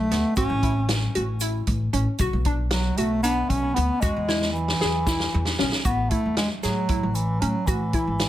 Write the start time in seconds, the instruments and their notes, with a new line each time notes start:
Already playing: bass clarinet A3
0.11 upright bass D2, synth arpeggio sound B3, snare, closed hi-hat
0.36 upright bass A1, bass clarinet C#4, synth arpeggio sound F#4, kick, closed hi-hat, shaker
0.50 upright bass A1
0.63 synth arpeggio sound E4, kick, closed hi-hat
0.89 snare, closed hi-hat
1.15 upright bass A1, synth arpeggio sound F#4, closed hi-hat
1.40 synth arpeggio sound E4, closed hi-hat, shaker
1.67 upright bass A1, kick, closed hi-hat
1.93 upright bass A1, synth arpeggio sound C#4, closed hi-hat
2.18 upright bass B1, synth arpeggio sound F#4, kick, closed hi-hat, shaker
2.33 upright bass B1
2.45 synth arpeggio sound D4, kick, closed hi-hat
2.71 bass clarinet F#3, snare, closed hi-hat
2.97 upright bass B1, bass clarinet A3, synth arpeggio sound F#4, closed hi-hat
3.23 bass clarinet B3, synth arpeggio sound D4, closed hi-hat, shaker
3.49 upright bass B1, bass clarinet C#4, kick, closed hi-hat
3.74 upright bass D2, bass clarinet B3, synth arpeggio sound B3, closed hi-hat
4.01 upright bass E2, bass clarinet G#3, synth arpeggio sound F#4, kick, closed hi-hat, shaker
4.16 upright bass E2
4.29 synth arpeggio sound E4, snare, shaker
4.42 snare
4.52 bass clarinet E3, shaker
4.68 snare
4.81 upright bass E2, synth arpeggio sound G#4, snare
5.07 synth arpeggio sound E4, kick, snare, shaker
5.20 snare
5.34 upright bass E2
5.45 snare
5.59 upright bass B1, synth arpeggio sound C#4, snare
5.72 snare
5.84 upright bass A1, bass clarinet B3, synth arpeggio sound F#4, kick, closed hi-hat, shaker
6.10 bass clarinet A3, synth arpeggio sound E4, kick, closed hi-hat, shaker
6.26 upright bass E2
6.37 bass clarinet G#3, snare, closed hi-hat, shaker
6.63 upright bass A2, bass clarinet F#3, synth arpeggio sound G#4, snare, closed hi-hat, shaker
6.89 synth arpeggio sound E4, kick, closed hi-hat
7.03 upright bass A1
7.15 bass clarinet E3, closed hi-hat, shaker
7.40 upright bass A2, bass clarinet F#3, synth arpeggio sound C#4, closed hi-hat
7.66 upright bass A2, bass clarinet E3, synth arpeggio sound F#4, kick, closed hi-hat, shaker
7.93 synth arpeggio sound E4, kick, closed hi-hat, shaker
8.07 upright bass G#1
8.19 snare, closed hi-hat, shaker